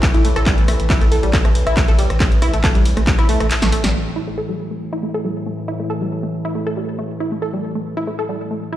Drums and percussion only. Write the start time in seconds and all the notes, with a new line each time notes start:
0.03 kick, clap, closed hi-hat, ride
0.14 closed hi-hat
0.25 open hi-hat
0.36 cross-stick, closed hi-hat
0.46 kick, clap, closed hi-hat, ride
0.58 closed hi-hat
0.68 cross-stick, open hi-hat
0.80 closed hi-hat
0.90 kick, clap, closed hi-hat, ride
1.01 closed hi-hat
1.12 open hi-hat
1.23 closed hi-hat
1.33 kick, clap, open hi-hat, ride
1.45 cross-stick, closed hi-hat
1.55 open hi-hat
1.67 cross-stick, closed hi-hat
1.77 kick, clap, closed hi-hat, ride
1.88 closed hi-hat
1.99 open hi-hat
2.10 cross-stick, closed hi-hat
2.20 kick, clap, closed hi-hat, ride
2.32 closed hi-hat
2.42 cross-stick, open hi-hat
2.54 closed hi-hat
2.64 kick, clap, closed hi-hat, ride
2.75 closed hi-hat
2.85 open hi-hat
2.97 cross-stick, closed hi-hat
3.07 kick, clap, closed hi-hat, ride
3.19 cross-stick, closed hi-hat
3.29 open hi-hat
3.40 cross-stick, closed hi-hat
3.51 clap, closed hi-hat, ride
3.62 snare, closed hi-hat
3.72 open hi-hat
3.84 snare, closed hi-hat
3.94 crash